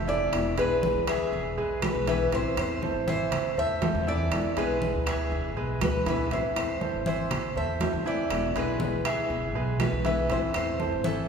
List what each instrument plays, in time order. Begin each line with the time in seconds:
Already playing: upright bass F1
0.08 grand piano E3 E4 E5, nylon-string guitar A3 C4 E4, cuban tres D5, high conga
0.32 upright bass E1, nylon-string guitar B2 D3 G#3 B3 E4, high conga, high timbale, claves
0.57 upright bass B1, nylon-string guitar D3 G#3 B3 E4, grand piano G#3 G#4 B4, cuban tres B4, high conga, high timbale
0.83 nylon-string guitar D3 G#3 B3 E4, high conga, low timbale
0.95 upright bass D2
1.07 grand piano E3 E4 E5, cuban tres G#4, high conga, high timbale, claves
1.32 upright bass E1, muted nylon-string guitar stroke, high conga
1.57 upright bass B1, grand piano G#3 G#4 B4, high conga
1.82 nylon-string guitar D3 G#3 B3 E4, cuban tres B4, high conga, high timbale, low timbale, claves
1.95 upright bass B1
2.07 nylon-string guitar D3 G#3 B3 E4, grand piano E3 E4 E5, cuban tres B4, high conga, high timbale
2.32 upright bass A1, grand piano E3 E4 E5, nylon-string guitar E3 A3 C4 E4, cuban tres C5, high conga, high timbale
2.57 upright bass E2, nylon-string guitar A3 C4 E4, cuban tres C5, high conga, high timbale, claves
2.82 nylon-string guitar E3 A3 C4 E4, grand piano A3 A4 C5, high conga, low timbale
2.94 upright bass G#1
3.07 grand piano E3 E4 E5, cuban tres C5, high conga
3.32 upright bass A1, muted nylon-string guitar stroke, high conga, low conga, high timbale, claves
3.57 upright bass E2, grand piano A3 A4 C5, cuban tres E5, high conga
3.82 nylon-string guitar E3 A3 C4 E4, grand piano A3 A4 C5, high conga, high timbale, low timbale
3.95 upright bass E2
4.07 grand piano E3 E4 E5, nylon-string guitar A3 C4 E4, cuban tres D5, high conga
4.32 upright bass E1, nylon-string guitar B2 D3 G#3 B3 E4, high conga, high timbale, claves
4.56 upright bass B1, nylon-string guitar D3 G#3 B3 E4, grand piano G#3 G#4 B4, cuban tres B4, high conga, high timbale
4.81 nylon-string guitar D3 G#3 B3 E4, high conga, low timbale
4.94 upright bass D2
5.06 grand piano E3 E4 E5, cuban tres G#4, high conga, high timbale, claves
5.31 upright bass E1, muted nylon-string guitar stroke, high conga
5.56 upright bass B1, grand piano G#3 G#4 B4, high conga
5.81 upright bass D2, nylon-string guitar D3 G#3 B3 E4, cuban tres B4, high conga, high timbale, low timbale, claves
6.06 upright bass B1, nylon-string guitar D3 G#3 B3 E4, grand piano E3 E4 E5, cuban tres B4, high conga, high timbale
6.31 upright bass A1, nylon-string guitar E3 A3 C4 E4, grand piano E3 E4 E5, cuban tres C5, high conga, high timbale
6.56 upright bass E2, nylon-string guitar A3 C4 E4, cuban tres C5, high conga, high timbale, claves
6.81 nylon-string guitar E3 A3 C4 E4, grand piano A3 A4 C5, high conga, low timbale
6.94 upright bass G#1
7.06 grand piano E3 E4 E5, cuban tres C5, high conga
7.31 upright bass A1, muted nylon-string guitar stroke, high conga, low conga, high timbale, claves
7.56 upright bass E2, grand piano A3 A4 C5, cuban tres E5, high conga
7.80 nylon-string guitar E3 A3 C4 E4, grand piano A3 A4 C5, high conga, high timbale, low timbale
7.93 upright bass E2
8.05 grand piano E3 E4 E5, nylon-string guitar A3 C4 E4, cuban tres D5, high conga
8.30 upright bass E1, nylon-string guitar B2 D3 G#3 B3 E4, high conga, high timbale, claves
8.55 upright bass B1, nylon-string guitar D3 G#3 B3 E4, grand piano G#3 G#4 B4, cuban tres B4, high conga, high timbale
8.80 nylon-string guitar D3 G#3 B3 E4, high conga, low timbale
8.93 upright bass D2
9.05 grand piano E3 E4 E5, cuban tres G#4, high conga, high timbale, claves
9.30 upright bass E1, muted nylon-string guitar stroke, high conga
9.55 upright bass B1, grand piano G#3 G#4 B4, high conga
9.80 nylon-string guitar D3 G#3 B3 E4, cuban tres B4, high conga, high timbale, low timbale, claves
9.92 upright bass B1
10.04 nylon-string guitar D3 G#3 B3 E4, grand piano E3 E4 E5, cuban tres B4, high conga, high timbale
10.30 upright bass A1, nylon-string guitar E3 A3 C4 E4, grand piano E3 E4 E5, cuban tres C5, high conga, high timbale
10.54 upright bass E2, nylon-string guitar A3 C4 E4, cuban tres C5, high timbale, claves
10.79 nylon-string guitar E3 A3 C4 E4, grand piano A3 A4 C5, high conga, low timbale
10.92 upright bass G#1
11.04 grand piano E3 E4 E5, cuban tres A4, high conga